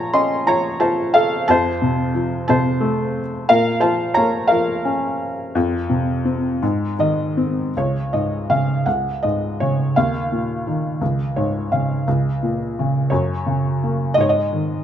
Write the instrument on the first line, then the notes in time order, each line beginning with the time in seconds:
felt piano
Already playing: A#2 F3 C#5 A5 A#5
0.13 C#4 D#5 C6
0.46 F3 C#5 A#5
0.80 F4 C5 A5
1.14 A4 F5
1.48 F2 C5 A5
1.82 C3
2.15 F3
2.48 C3 C5 A5
2.81 A3
3.49 A#2 A#4 F5
3.80 F3 C5 A5
4.14 A#3 C#5 A#5
4.47 A#4 F5
4.52 F3
4.85 C#4
5.55 F2
5.89 C3
6.25 C4
6.62 G#2
6.99 D#3 D#5
7.37 C4
7.77 C#2 C#5
8.13 G#2 D#5
8.50 C#3 F5
8.86 C#2 F#5
9.23 G#2 D#5
9.60 C#3 C#5
9.96 D#2 F5
10.32 A#2
10.67 D#3
11.01 C#2
11.36 G#2 C#5
11.72 C#3 F5
12.07 C#2
12.43 A#2
12.79 C#3
13.10 F#2 C#5
13.46 C#3
13.84 A#3
14.14 G#2 D#5
14.21 C#5
14.29 D#5
14.52 D#3